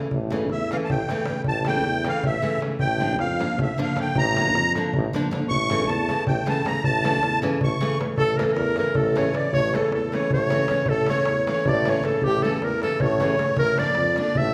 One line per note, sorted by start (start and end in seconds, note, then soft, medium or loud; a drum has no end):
0.11 0.52 A1 loud
0.11 darbuka dum medium
0.30 0.45 C#3 medium
0.30 0.46 E3 medium
0.30 0.46 A3 medium
0.30 0.46 C#4 medium
0.30 darbuka tek medium
0.41 darbuka tek soft
0.50 0.74 E2 medium
0.50 0.70 E5 medium
0.50 darbuka tek soft
0.71 0.85 C#3 medium
0.71 0.85 E3 medium
0.71 0.86 A3 medium
0.71 0.86 C#4 medium
0.71 0.77 F5 medium
0.71 darbuka tek medium
0.84 0.90 A5 medium
0.89 1.01 A1 loud
0.89 1.42 G5 medium
0.89 darbuka dum medium
1.09 1.23 C#3 medium
1.09 1.24 E3 medium
1.09 1.24 A3 medium
1.09 1.24 C#4 medium
1.09 darbuka tek medium
1.26 1.41 C#3 medium
1.26 1.42 E3 soft
1.26 1.42 A3 medium
1.26 1.42 C#4 medium
1.26 darbuka tek medium
1.44 1.86 A1 loud
1.44 1.66 A5 loud
1.44 darbuka dum loud
1.65 1.80 C#3 medium
1.65 1.81 E3 medium
1.65 1.81 A3 medium
1.65 1.81 C#4 medium
1.65 2.07 G5 loud
1.65 darbuka tek medium
1.75 darbuka tek soft
1.84 2.08 E2 medium
1.84 darbuka tek medium
2.04 2.19 C#3 medium
2.04 2.20 E3 medium
2.04 2.20 A3 medium
2.04 2.21 C#4 medium
2.04 2.24 F5 medium
2.04 darbuka tek medium
2.16 darbuka tek soft
2.24 2.36 A1 loud
2.24 2.61 E5 medium
2.24 darbuka dum loud
2.42 2.57 C#3 medium
2.42 2.57 E3 medium
2.42 2.57 A3 medium
2.42 2.57 C#4 medium
2.54 darbuka tek soft
2.60 2.75 C#3 soft
2.60 2.75 E3 soft
2.60 2.75 A3 soft
2.60 2.76 C#4 medium
2.60 darbuka tek medium
2.71 darbuka tek soft
2.79 3.21 A1 loud
2.79 3.17 G5 loud
2.79 darbuka dum medium
3.00 3.14 D3 medium
3.00 3.15 F3 medium
3.00 3.15 A#3 medium
3.00 3.15 D4 medium
3.10 darbuka tek soft
3.19 3.43 F2 medium
3.19 3.60 F5 medium
3.19 darbuka tek medium
3.39 3.54 D3 medium
3.39 3.54 F3 soft
3.39 3.54 A#3 medium
3.39 3.55 D4 medium
3.39 darbuka tek medium
3.57 3.70 A1 loud
3.57 darbuka dum loud
3.62 3.79 E5 medium
3.78 3.92 D3 medium
3.78 3.92 F3 medium
3.78 3.93 A#3 medium
3.78 3.93 D4 medium
3.78 darbuka tek medium
3.82 3.99 F5 medium
3.96 4.10 D3 medium
3.96 4.10 F3 soft
3.96 4.11 A#3 soft
3.96 4.11 D4 medium
3.96 darbuka tek medium
4.01 4.17 G5 medium
4.15 4.55 A1 loud
4.15 4.72 A#5 loud
4.15 darbuka dum loud
4.36 4.50 D3 medium
4.36 4.50 F3 medium
4.36 4.51 A#3 medium
4.36 4.51 D4 medium
4.36 darbuka tek medium
4.46 darbuka tek soft
4.53 4.77 F2 loud
4.53 darbuka tek medium
4.75 4.89 D3 medium
4.75 4.90 F3 medium
4.75 4.90 A#3 medium
4.75 4.90 D4 medium
4.75 darbuka tek medium
4.93 5.06 A1 loud
4.93 darbuka dum medium
5.13 5.27 D3 medium
5.13 5.27 F3 medium
5.13 5.28 A#3 medium
5.13 5.28 D4 loud
5.13 darbuka tek medium
5.31 5.45 D3 medium
5.31 5.46 F3 medium
5.31 5.46 A#3 medium
5.31 5.46 D4 medium
5.31 darbuka tek medium
5.49 5.90 A1 loud
5.49 5.90 C#6 loud
5.49 darbuka dum medium
5.69 5.84 C#3 medium
5.69 5.84 E3 medium
5.69 5.84 A3 medium
5.69 5.85 C#4 medium
5.69 darbuka tek medium
5.80 darbuka tek soft
5.88 6.12 E2 loud
5.88 6.25 A5 medium
5.88 darbuka tek medium
6.09 6.23 C#3 medium
6.09 6.23 E3 soft
6.09 6.24 A3 medium
6.09 6.24 C#4 medium
6.09 darbuka tek medium
6.27 6.39 A1 loud
6.27 6.48 G5 medium
6.27 darbuka dum loud
6.46 6.61 C#3 medium
6.46 6.61 E3 medium
6.46 6.61 A3 medium
6.46 6.61 C#4 medium
6.46 6.67 A5 medium
6.46 darbuka tek medium
6.65 6.79 C#3 medium
6.65 6.79 E3 soft
6.65 6.80 A3 soft
6.65 6.80 C#4 medium
6.65 6.83 A#5 medium
6.65 darbuka tek medium
6.84 7.23 A1 loud
6.84 7.40 A5 loud
6.84 darbuka dum medium
7.03 7.18 C#3 medium
7.03 7.18 E3 medium
7.03 7.19 A3 medium
7.03 7.19 C#4 medium
7.03 darbuka tek medium
7.13 darbuka tek soft
7.22 7.46 E2 medium
7.22 darbuka tek medium
7.33 darbuka tek soft
7.42 7.57 C#3 medium
7.42 7.57 E3 medium
7.42 7.57 A3 medium
7.42 7.58 C#4 medium
7.42 darbuka tek medium
7.53 darbuka tek soft
7.61 7.73 A1 loud
7.61 7.98 C#6 medium
7.61 darbuka dum loud
7.71 darbuka tek soft
7.80 7.95 C#3 medium
7.80 7.95 E3 medium
7.80 7.96 A3 medium
7.80 7.96 C#4 medium
7.80 darbuka tek medium
7.91 darbuka tek soft
7.99 8.13 C#3 medium
7.99 8.13 E3 soft
7.99 8.14 A3 medium
7.99 8.14 C#4 medium
7.99 darbuka tek medium
8.10 darbuka tek soft
8.16 8.40 A1 medium
8.16 8.37 A4 loud
8.16 8.38 A4 loud
8.16 darbuka dum loud
8.37 8.53 C#3 medium
8.37 8.53 E3 medium
8.37 8.53 A3 medium
8.37 8.54 C#4 medium
8.37 8.45 A#4 medium
8.37 darbuka tek medium
8.44 8.54 A4 medium
8.44 8.52 A4 medium
8.48 darbuka tek soft
8.53 8.80 E2 medium
8.53 8.75 A#4 medium
8.53 8.78 A#4 loud
8.53 darbuka tek medium
8.76 8.91 C#3 medium
8.76 8.91 E3 medium
8.76 8.92 A3 medium
8.76 8.92 C#4 medium
8.76 8.94 A#4 medium
8.76 8.98 A#4 medium
8.76 darbuka tek medium
8.95 9.30 A1 loud
8.95 9.19 A4 medium
8.95 9.16 A4 medium
8.95 darbuka dum loud
9.15 9.30 C#3 medium
9.15 9.30 E3 medium
9.15 9.31 A3 medium
9.15 9.31 C#4 medium
9.15 9.38 C#5 medium
9.15 9.36 C#5 medium
9.15 darbuka tek medium
9.33 9.48 C#3 soft
9.33 9.48 E3 soft
9.33 9.48 A3 medium
9.33 9.49 C#4 medium
9.33 9.53 D5 medium
9.33 9.54 D5 medium
9.33 darbuka tek medium
9.52 9.76 A1 loud
9.52 9.77 C#5 loud
9.52 9.73 C#5 loud
9.52 darbuka dum medium
9.74 9.88 C#3 medium
9.74 9.88 E3 medium
9.74 9.88 A3 medium
9.74 9.89 C#4 medium
9.74 9.92 A4 medium
9.74 9.93 A4 medium
9.74 darbuka tek medium
9.83 darbuka tek soft
9.91 10.15 E2 medium
9.91 darbuka tek medium
9.95 10.16 A4 medium
9.95 10.13 A4 medium
10.12 10.26 C#3 medium
10.12 10.27 E3 medium
10.12 10.27 A3 medium
10.12 10.28 C#4 medium
10.12 10.32 C#5 medium
10.12 darbuka tek medium
10.29 10.64 A1 loud
10.29 darbuka dum loud
10.33 10.85 C#5 medium
10.33 10.91 C#5 loud
10.50 10.64 C#3 medium
10.50 10.65 E3 medium
10.50 10.65 A3 medium
10.50 10.65 C#4 medium
10.50 darbuka tek medium
10.68 10.83 C#3 medium
10.68 10.83 E3 medium
10.68 10.84 A3 soft
10.68 10.84 C#4 medium
10.68 darbuka tek medium
10.86 11.10 A1 loud
10.86 11.09 A4 loud
10.86 darbuka dum loud
10.90 11.09 A4 loud
11.06 11.23 C#3 medium
11.06 11.23 E3 medium
11.06 11.23 A3 medium
11.06 11.23 C#4 medium
11.06 11.45 C#5 loud
11.06 11.46 C#5 medium
11.06 darbuka tek medium
11.16 darbuka tek soft
11.25 11.50 E2 medium
11.25 darbuka tek medium
11.47 11.61 C#3 medium
11.47 11.61 E3 medium
11.47 11.62 A3 medium
11.47 11.62 C#4 medium
11.47 11.65 C#5 medium
11.47 darbuka tek medium
11.51 11.71 C#5 medium
11.65 11.99 A1 loud
11.65 11.86 D5 medium
11.65 darbuka dum loud
11.69 11.91 D5 medium
11.85 11.99 C#3 medium
11.85 12.00 E3 medium
11.85 12.00 A3 medium
11.85 12.01 C#4 medium
11.85 12.05 C#5 medium
11.85 darbuka tek medium
11.90 12.07 C#5 medium
12.03 12.17 C#3 medium
12.03 12.18 E3 medium
12.03 12.18 A3 medium
12.03 12.18 C#4 medium
12.03 12.26 A4 medium
12.03 12.23 A4 medium
12.03 darbuka tek medium
12.21 12.45 A1 loud
12.21 12.45 G4 loud
12.21 darbuka dum medium
12.26 12.45 G4 medium
12.32 darbuka tek soft
12.42 12.57 C#3 medium
12.42 12.57 E3 medium
12.42 12.58 A3 medium
12.42 12.58 C#4 medium
12.42 12.66 A4 medium
12.42 12.63 A4 medium
12.42 darbuka tek medium
12.52 darbuka tek soft
12.61 12.85 E2 medium
12.61 12.82 A#4 loud
12.61 12.84 A#4 medium
12.61 darbuka tek medium
12.82 12.97 C#3 medium
12.82 12.97 E3 medium
12.82 12.97 A3 medium
12.82 12.97 C#4 medium
12.82 13.03 A4 loud
12.82 13.01 A4 medium
12.82 darbuka tek medium
13.00 13.34 A1 loud
13.00 13.57 C#5 loud
13.00 darbuka dum loud
13.05 13.59 C#5 medium
13.20 13.34 C#3 medium
13.20 13.35 E3 medium
13.20 13.35 A3 medium
13.20 13.35 C#4 medium
13.20 darbuka tek medium
13.30 darbuka tek soft
13.38 13.52 C#3 medium
13.38 13.53 E3 soft
13.38 13.53 A3 soft
13.38 13.53 C#4 soft
13.38 darbuka tek medium
13.48 darbuka tek soft
13.57 13.81 A1 medium
13.57 13.81 A#4 loud
13.57 13.78 A#4 loud
13.57 darbuka dum loud
13.78 13.92 D3 medium
13.78 13.93 F3 medium
13.78 13.93 A#3 medium
13.78 13.93 D4 medium
13.78 14.18 D5 loud
13.78 darbuka tek medium
13.86 darbuka tek soft
13.95 14.20 F2 medium
13.95 darbuka tek medium
14.16 14.31 D3 medium
14.16 14.31 F3 medium
14.16 14.32 A#3 medium
14.16 14.32 D4 medium
14.16 14.39 D5 loud
14.16 darbuka tek medium
14.21 14.36 D5 medium
14.35 14.54 A1 loud
14.35 14.54 E5 loud
14.35 14.54 E5 medium
14.35 darbuka dum loud